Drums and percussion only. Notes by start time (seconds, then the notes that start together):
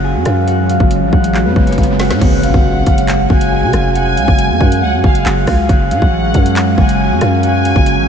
0.25 cross-stick, closed hi-hat
0.48 closed hi-hat
0.69 closed hi-hat
0.80 kick
0.91 closed hi-hat
1.13 kick
1.24 closed hi-hat
1.34 clap
1.56 kick
1.67 closed hi-hat
1.73 closed hi-hat
1.78 kick, closed hi-hat
1.83 closed hi-hat
1.99 snare, open hi-hat
2.11 snare
2.21 kick, closed hi-hat, crash
2.43 closed hi-hat
2.54 kick
2.86 kick, closed hi-hat
2.98 closed hi-hat
3.08 clap, closed hi-hat
3.30 kick
3.41 closed hi-hat
3.73 cross-stick, closed hi-hat
3.95 closed hi-hat
4.17 closed hi-hat
4.28 kick
4.39 closed hi-hat
4.61 kick
4.72 closed hi-hat
5.04 kick
5.15 closed hi-hat
5.26 clap
5.47 kick, cross-stick, open hi-hat
5.69 kick, closed hi-hat
5.91 closed hi-hat
6.02 kick
6.34 kick, closed hi-hat
6.46 closed hi-hat
6.56 clap, closed hi-hat
6.78 kick
6.89 closed hi-hat
7.21 cross-stick, closed hi-hat
7.43 closed hi-hat
7.65 closed hi-hat
7.76 kick
7.86 closed hi-hat